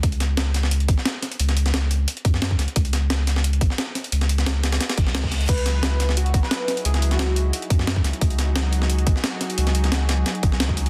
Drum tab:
CC |----------------|----------------|----------------|----------------|
HH |xxx-x-x-xxx-x-xx|xxxxx-x-xxx-x-xx|xxx-x-x-xxx-x-xx|xxxxx-xxxxx-x-xx|
SD |--o-o-oo---oo-o-|-o-oo------oo-o-|--o-o-oo---oo-o-|-o-oo-oooo-oo-o-|
BD |o---------o-----|----------o--o--|o---------o-----|----------o--o--|

CC |x---------------|----------------|----------------|----------------|
HH |xxx-x-x-xxx-x-xx|xxxxx-x-xxx-x-xx|xxx-x-x-xxx-x-xx|xxxxx-x-xxx-x-xx|
SD |--o-o-oo---oo-o-|-o-oo------oo-o-|--o-o--o---oo-o-|-o-oo-o-o--oo---|
BD |o---------o-----|----------o--o--|o---------o-----|----------o--o--|